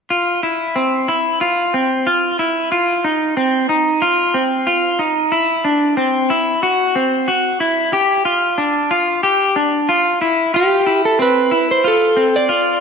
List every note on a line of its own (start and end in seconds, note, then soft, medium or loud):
0.10 0.43 F4 medium
0.43 0.76 E4 medium
0.76 1.08 C4 medium
1.08 1.41 E4 medium
1.41 1.74 F4 medium
1.74 2.06 C4 medium
2.07 2.39 F4 medium
2.39 2.71 E4 medium
2.72 3.04 F4 medium
3.05 3.37 D#4 medium
3.37 3.69 C4 medium
3.69 4.02 D#4 medium
4.02 4.34 F4 medium
4.34 4.67 C4 medium
4.67 5.00 F4 medium
4.99 5.32 D#4 medium
5.32 5.65 E4 medium
5.65 5.97 D4 medium
5.97 6.30 C4 medium
6.30 6.62 E4 medium
6.63 6.95 F#4 medium
6.95 7.28 C4 medium
7.28 7.60 F#4 medium
7.60 7.93 E4 medium
7.93 8.25 G4 medium
8.25 8.58 F4 medium
8.58 8.91 D4 medium
8.91 9.23 F4 medium
9.23 9.56 G4 medium
9.56 9.89 D4 medium
9.89 10.21 F4 medium
10.21 10.54 E4 medium
10.54 10.86 F4 medium
10.54 11.05 G4 medium
10.86 11.19 E4 medium
11.05 11.21 A4 medium
11.19 11.52 C4 medium
11.19 11.70 B4 medium
11.51 11.84 E4 medium
11.71 11.86 C5 medium
11.84 12.17 F4 medium
11.84 12.36 A4 medium
12.17 12.49 C4 medium
12.36 12.80 D5 medium
12.49 12.80 F4 medium